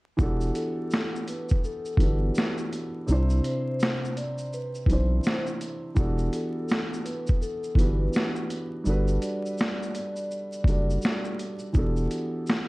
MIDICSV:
0, 0, Header, 1, 5, 480
1, 0, Start_track
1, 0, Key_signature, 1, "minor"
1, 0, Tempo, 722892
1, 122, Time_signature, 4, 2, 24, 8
1, 8421, End_track
2, 0, Start_track
2, 0, Title_t, "Vibraphone"
2, 0, Program_c, 0, 11
2, 372, Note_on_c, 0, 69, 69
2, 820, Note_off_c, 0, 69, 0
2, 853, Note_on_c, 0, 71, 68
2, 1064, Note_off_c, 0, 71, 0
2, 1094, Note_on_c, 0, 69, 77
2, 1304, Note_off_c, 0, 69, 0
2, 1329, Note_on_c, 0, 71, 69
2, 1691, Note_off_c, 0, 71, 0
2, 2289, Note_on_c, 0, 72, 78
2, 2739, Note_off_c, 0, 72, 0
2, 2769, Note_on_c, 0, 74, 66
2, 2982, Note_off_c, 0, 74, 0
2, 3012, Note_on_c, 0, 71, 78
2, 3224, Note_off_c, 0, 71, 0
2, 3254, Note_on_c, 0, 72, 69
2, 3613, Note_off_c, 0, 72, 0
2, 4212, Note_on_c, 0, 69, 67
2, 4660, Note_off_c, 0, 69, 0
2, 4683, Note_on_c, 0, 71, 70
2, 4899, Note_off_c, 0, 71, 0
2, 4924, Note_on_c, 0, 69, 88
2, 5139, Note_off_c, 0, 69, 0
2, 5164, Note_on_c, 0, 71, 75
2, 5528, Note_off_c, 0, 71, 0
2, 6127, Note_on_c, 0, 74, 67
2, 6578, Note_off_c, 0, 74, 0
2, 6609, Note_on_c, 0, 74, 71
2, 7447, Note_off_c, 0, 74, 0
2, 8421, End_track
3, 0, Start_track
3, 0, Title_t, "Felt piano"
3, 0, Program_c, 1, 0
3, 112, Note_on_c, 1, 52, 90
3, 120, Note_on_c, 1, 59, 77
3, 128, Note_on_c, 1, 62, 80
3, 134, Note_on_c, 1, 66, 83
3, 143, Note_on_c, 1, 67, 80
3, 152, Note_on_c, 1, 69, 97
3, 263, Control_c, 1, 64, 127
3, 835, Note_off_c, 1, 52, 0
3, 839, Note_off_c, 1, 59, 0
3, 843, Note_off_c, 1, 62, 0
3, 846, Note_off_c, 1, 66, 0
3, 850, Note_off_c, 1, 67, 0
3, 855, Note_off_c, 1, 69, 0
3, 1313, Note_on_c, 1, 52, 74
3, 1320, Note_on_c, 1, 59, 61
3, 1327, Note_on_c, 1, 62, 70
3, 1334, Note_on_c, 1, 66, 66
3, 1343, Note_on_c, 1, 67, 68
3, 1350, Note_on_c, 1, 69, 81
3, 1869, Note_off_c, 1, 52, 0
3, 1872, Note_off_c, 1, 59, 0
3, 1876, Note_off_c, 1, 62, 0
3, 1879, Note_off_c, 1, 66, 0
3, 1884, Note_off_c, 1, 67, 0
3, 1887, Note_off_c, 1, 69, 0
3, 2035, Note_on_c, 1, 48, 85
3, 2045, Note_on_c, 1, 60, 82
3, 2050, Control_c, 1, 64, 0
3, 2055, Note_on_c, 1, 62, 80
3, 2063, Note_on_c, 1, 64, 78
3, 2073, Note_on_c, 1, 72, 96
3, 2164, Control_c, 1, 64, 127
3, 2756, Note_off_c, 1, 48, 0
3, 2761, Note_off_c, 1, 60, 0
3, 2766, Note_off_c, 1, 62, 0
3, 2770, Note_off_c, 1, 64, 0
3, 2775, Note_off_c, 1, 72, 0
3, 3233, Note_on_c, 1, 52, 70
3, 3243, Note_on_c, 1, 60, 70
3, 3253, Note_on_c, 1, 62, 66
3, 3263, Note_on_c, 1, 64, 66
3, 3272, Note_on_c, 1, 72, 81
3, 3789, Note_off_c, 1, 52, 0
3, 3794, Note_off_c, 1, 60, 0
3, 3799, Note_off_c, 1, 62, 0
3, 3804, Note_off_c, 1, 64, 0
3, 3808, Note_off_c, 1, 72, 0
3, 3947, Note_on_c, 1, 52, 85
3, 3955, Note_on_c, 1, 59, 83
3, 3963, Note_on_c, 1, 62, 79
3, 3970, Control_c, 1, 64, 0
3, 3970, Note_on_c, 1, 66, 83
3, 3978, Note_on_c, 1, 67, 72
3, 3985, Note_on_c, 1, 69, 90
3, 4070, Control_c, 1, 64, 127
3, 4672, Note_off_c, 1, 52, 0
3, 4676, Note_off_c, 1, 59, 0
3, 4680, Note_off_c, 1, 62, 0
3, 4684, Note_off_c, 1, 66, 0
3, 4688, Note_off_c, 1, 67, 0
3, 4691, Note_off_c, 1, 69, 0
3, 5149, Note_on_c, 1, 52, 78
3, 5157, Note_on_c, 1, 59, 68
3, 5163, Note_on_c, 1, 62, 66
3, 5173, Note_on_c, 1, 66, 68
3, 5179, Note_on_c, 1, 67, 69
3, 5187, Note_on_c, 1, 71, 83
3, 5707, Note_off_c, 1, 52, 0
3, 5711, Note_off_c, 1, 59, 0
3, 5714, Note_off_c, 1, 62, 0
3, 5719, Note_off_c, 1, 66, 0
3, 5722, Note_off_c, 1, 67, 0
3, 5726, Note_off_c, 1, 71, 0
3, 5870, Note_on_c, 1, 55, 85
3, 5878, Note_on_c, 1, 62, 84
3, 5889, Note_on_c, 1, 66, 74
3, 5891, Control_c, 1, 64, 0
3, 5899, Note_on_c, 1, 69, 79
3, 5908, Note_on_c, 1, 71, 90
3, 5988, Control_c, 1, 64, 127
3, 6594, Note_off_c, 1, 55, 0
3, 6598, Note_off_c, 1, 62, 0
3, 6603, Note_off_c, 1, 66, 0
3, 6608, Note_off_c, 1, 69, 0
3, 6613, Note_off_c, 1, 71, 0
3, 7072, Note_on_c, 1, 55, 68
3, 7082, Note_on_c, 1, 62, 68
3, 7092, Note_on_c, 1, 66, 69
3, 7100, Note_on_c, 1, 69, 64
3, 7111, Note_on_c, 1, 74, 82
3, 7628, Note_off_c, 1, 55, 0
3, 7634, Note_off_c, 1, 62, 0
3, 7638, Note_off_c, 1, 66, 0
3, 7642, Note_off_c, 1, 69, 0
3, 7648, Note_off_c, 1, 74, 0
3, 7787, Note_on_c, 1, 52, 83
3, 7795, Note_on_c, 1, 59, 79
3, 7803, Note_on_c, 1, 62, 73
3, 7810, Note_on_c, 1, 66, 72
3, 7812, Control_c, 1, 64, 0
3, 7819, Note_on_c, 1, 67, 76
3, 7826, Note_on_c, 1, 69, 93
3, 7945, Control_c, 1, 64, 127
3, 8421, Note_off_c, 1, 52, 0
3, 8421, Note_off_c, 1, 59, 0
3, 8421, Note_off_c, 1, 62, 0
3, 8421, Note_off_c, 1, 66, 0
3, 8421, Note_off_c, 1, 67, 0
3, 8421, Note_off_c, 1, 69, 0
3, 8421, End_track
4, 0, Start_track
4, 0, Title_t, "Sub bass"
4, 0, Program_c, 2, 38
4, 127, Note_on_c, 2, 28, 112
4, 342, Note_off_c, 2, 28, 0
4, 1313, Note_on_c, 2, 31, 97
4, 1534, Note_off_c, 2, 31, 0
4, 2050, Note_on_c, 2, 36, 118
4, 2263, Note_off_c, 2, 36, 0
4, 3233, Note_on_c, 2, 35, 97
4, 3454, Note_off_c, 2, 35, 0
4, 3963, Note_on_c, 2, 28, 109
4, 4180, Note_off_c, 2, 28, 0
4, 5151, Note_on_c, 2, 31, 94
4, 5373, Note_off_c, 2, 31, 0
4, 5884, Note_on_c, 2, 31, 109
4, 6101, Note_off_c, 2, 31, 0
4, 7070, Note_on_c, 2, 30, 104
4, 7292, Note_off_c, 2, 30, 0
4, 7803, Note_on_c, 2, 28, 109
4, 8020, Note_off_c, 2, 28, 0
4, 8421, End_track
5, 0, Start_track
5, 0, Title_t, "Drums"
5, 125, Note_on_c, 9, 36, 108
5, 125, Note_on_c, 9, 82, 70
5, 191, Note_off_c, 9, 36, 0
5, 191, Note_off_c, 9, 82, 0
5, 270, Note_on_c, 9, 82, 48
5, 336, Note_off_c, 9, 82, 0
5, 365, Note_on_c, 9, 42, 66
5, 365, Note_on_c, 9, 82, 46
5, 432, Note_off_c, 9, 42, 0
5, 432, Note_off_c, 9, 82, 0
5, 601, Note_on_c, 9, 82, 53
5, 621, Note_on_c, 9, 38, 95
5, 667, Note_off_c, 9, 82, 0
5, 687, Note_off_c, 9, 38, 0
5, 767, Note_on_c, 9, 82, 49
5, 833, Note_off_c, 9, 82, 0
5, 847, Note_on_c, 9, 42, 72
5, 847, Note_on_c, 9, 82, 47
5, 914, Note_off_c, 9, 42, 0
5, 914, Note_off_c, 9, 82, 0
5, 989, Note_on_c, 9, 82, 51
5, 1005, Note_on_c, 9, 36, 93
5, 1055, Note_off_c, 9, 82, 0
5, 1071, Note_off_c, 9, 36, 0
5, 1089, Note_on_c, 9, 82, 60
5, 1156, Note_off_c, 9, 82, 0
5, 1231, Note_on_c, 9, 82, 43
5, 1297, Note_off_c, 9, 82, 0
5, 1310, Note_on_c, 9, 36, 91
5, 1330, Note_on_c, 9, 42, 61
5, 1330, Note_on_c, 9, 82, 43
5, 1377, Note_off_c, 9, 36, 0
5, 1396, Note_off_c, 9, 42, 0
5, 1396, Note_off_c, 9, 82, 0
5, 1559, Note_on_c, 9, 82, 70
5, 1581, Note_on_c, 9, 38, 113
5, 1625, Note_off_c, 9, 82, 0
5, 1647, Note_off_c, 9, 38, 0
5, 1710, Note_on_c, 9, 82, 49
5, 1777, Note_off_c, 9, 82, 0
5, 1810, Note_on_c, 9, 42, 66
5, 1810, Note_on_c, 9, 82, 48
5, 1876, Note_off_c, 9, 42, 0
5, 1876, Note_off_c, 9, 82, 0
5, 2044, Note_on_c, 9, 82, 67
5, 2111, Note_off_c, 9, 82, 0
5, 2190, Note_on_c, 9, 82, 42
5, 2257, Note_off_c, 9, 82, 0
5, 2286, Note_on_c, 9, 42, 61
5, 2286, Note_on_c, 9, 82, 45
5, 2353, Note_off_c, 9, 42, 0
5, 2353, Note_off_c, 9, 82, 0
5, 2521, Note_on_c, 9, 82, 56
5, 2542, Note_on_c, 9, 38, 95
5, 2588, Note_off_c, 9, 82, 0
5, 2608, Note_off_c, 9, 38, 0
5, 2687, Note_on_c, 9, 82, 49
5, 2754, Note_off_c, 9, 82, 0
5, 2768, Note_on_c, 9, 42, 66
5, 2768, Note_on_c, 9, 82, 49
5, 2835, Note_off_c, 9, 42, 0
5, 2835, Note_off_c, 9, 82, 0
5, 2908, Note_on_c, 9, 82, 46
5, 2974, Note_off_c, 9, 82, 0
5, 3007, Note_on_c, 9, 82, 58
5, 3073, Note_off_c, 9, 82, 0
5, 3151, Note_on_c, 9, 82, 42
5, 3218, Note_off_c, 9, 82, 0
5, 3229, Note_on_c, 9, 36, 90
5, 3251, Note_on_c, 9, 42, 65
5, 3251, Note_on_c, 9, 82, 45
5, 3295, Note_off_c, 9, 36, 0
5, 3317, Note_off_c, 9, 42, 0
5, 3317, Note_off_c, 9, 82, 0
5, 3476, Note_on_c, 9, 82, 69
5, 3498, Note_on_c, 9, 38, 111
5, 3543, Note_off_c, 9, 82, 0
5, 3564, Note_off_c, 9, 38, 0
5, 3629, Note_on_c, 9, 82, 49
5, 3695, Note_off_c, 9, 82, 0
5, 3725, Note_on_c, 9, 42, 74
5, 3725, Note_on_c, 9, 82, 49
5, 3791, Note_off_c, 9, 42, 0
5, 3791, Note_off_c, 9, 82, 0
5, 3959, Note_on_c, 9, 82, 64
5, 3962, Note_on_c, 9, 36, 116
5, 4025, Note_off_c, 9, 82, 0
5, 4028, Note_off_c, 9, 36, 0
5, 4105, Note_on_c, 9, 82, 45
5, 4171, Note_off_c, 9, 82, 0
5, 4202, Note_on_c, 9, 42, 66
5, 4202, Note_on_c, 9, 82, 46
5, 4268, Note_off_c, 9, 42, 0
5, 4268, Note_off_c, 9, 82, 0
5, 4438, Note_on_c, 9, 82, 51
5, 4459, Note_on_c, 9, 38, 96
5, 4505, Note_off_c, 9, 82, 0
5, 4525, Note_off_c, 9, 38, 0
5, 4605, Note_on_c, 9, 82, 52
5, 4671, Note_off_c, 9, 82, 0
5, 4686, Note_on_c, 9, 42, 70
5, 4686, Note_on_c, 9, 82, 48
5, 4753, Note_off_c, 9, 42, 0
5, 4753, Note_off_c, 9, 82, 0
5, 4826, Note_on_c, 9, 82, 50
5, 4842, Note_on_c, 9, 36, 92
5, 4892, Note_off_c, 9, 82, 0
5, 4909, Note_off_c, 9, 36, 0
5, 4928, Note_on_c, 9, 82, 67
5, 4994, Note_off_c, 9, 82, 0
5, 5069, Note_on_c, 9, 82, 46
5, 5135, Note_off_c, 9, 82, 0
5, 5147, Note_on_c, 9, 36, 81
5, 5170, Note_on_c, 9, 42, 67
5, 5170, Note_on_c, 9, 82, 43
5, 5214, Note_off_c, 9, 36, 0
5, 5237, Note_off_c, 9, 42, 0
5, 5237, Note_off_c, 9, 82, 0
5, 5398, Note_on_c, 9, 82, 73
5, 5420, Note_on_c, 9, 38, 103
5, 5464, Note_off_c, 9, 82, 0
5, 5486, Note_off_c, 9, 38, 0
5, 5548, Note_on_c, 9, 82, 46
5, 5614, Note_off_c, 9, 82, 0
5, 5646, Note_on_c, 9, 42, 67
5, 5646, Note_on_c, 9, 82, 53
5, 5712, Note_off_c, 9, 42, 0
5, 5712, Note_off_c, 9, 82, 0
5, 5881, Note_on_c, 9, 82, 67
5, 5947, Note_off_c, 9, 82, 0
5, 6026, Note_on_c, 9, 82, 46
5, 6093, Note_off_c, 9, 82, 0
5, 6122, Note_on_c, 9, 42, 65
5, 6122, Note_on_c, 9, 82, 51
5, 6188, Note_off_c, 9, 42, 0
5, 6188, Note_off_c, 9, 82, 0
5, 6279, Note_on_c, 9, 82, 45
5, 6345, Note_off_c, 9, 82, 0
5, 6359, Note_on_c, 9, 82, 54
5, 6379, Note_on_c, 9, 38, 97
5, 6425, Note_off_c, 9, 82, 0
5, 6446, Note_off_c, 9, 38, 0
5, 6524, Note_on_c, 9, 82, 47
5, 6590, Note_off_c, 9, 82, 0
5, 6604, Note_on_c, 9, 42, 65
5, 6604, Note_on_c, 9, 82, 48
5, 6671, Note_off_c, 9, 42, 0
5, 6671, Note_off_c, 9, 82, 0
5, 6746, Note_on_c, 9, 82, 47
5, 6813, Note_off_c, 9, 82, 0
5, 6846, Note_on_c, 9, 82, 58
5, 6913, Note_off_c, 9, 82, 0
5, 6988, Note_on_c, 9, 82, 47
5, 7055, Note_off_c, 9, 82, 0
5, 7067, Note_on_c, 9, 36, 91
5, 7089, Note_on_c, 9, 42, 60
5, 7089, Note_on_c, 9, 82, 43
5, 7133, Note_off_c, 9, 36, 0
5, 7155, Note_off_c, 9, 42, 0
5, 7155, Note_off_c, 9, 82, 0
5, 7238, Note_on_c, 9, 82, 46
5, 7305, Note_off_c, 9, 82, 0
5, 7315, Note_on_c, 9, 82, 68
5, 7337, Note_on_c, 9, 38, 116
5, 7381, Note_off_c, 9, 82, 0
5, 7403, Note_off_c, 9, 38, 0
5, 7467, Note_on_c, 9, 82, 47
5, 7533, Note_off_c, 9, 82, 0
5, 7565, Note_on_c, 9, 42, 66
5, 7565, Note_on_c, 9, 82, 52
5, 7631, Note_off_c, 9, 42, 0
5, 7631, Note_off_c, 9, 82, 0
5, 7693, Note_on_c, 9, 82, 42
5, 7760, Note_off_c, 9, 82, 0
5, 7796, Note_on_c, 9, 82, 68
5, 7800, Note_on_c, 9, 36, 114
5, 7863, Note_off_c, 9, 82, 0
5, 7867, Note_off_c, 9, 36, 0
5, 7943, Note_on_c, 9, 82, 44
5, 8009, Note_off_c, 9, 82, 0
5, 8040, Note_on_c, 9, 42, 71
5, 8040, Note_on_c, 9, 82, 48
5, 8106, Note_off_c, 9, 42, 0
5, 8106, Note_off_c, 9, 82, 0
5, 8277, Note_on_c, 9, 82, 57
5, 8297, Note_on_c, 9, 38, 100
5, 8343, Note_off_c, 9, 82, 0
5, 8364, Note_off_c, 9, 38, 0
5, 8421, End_track
0, 0, End_of_file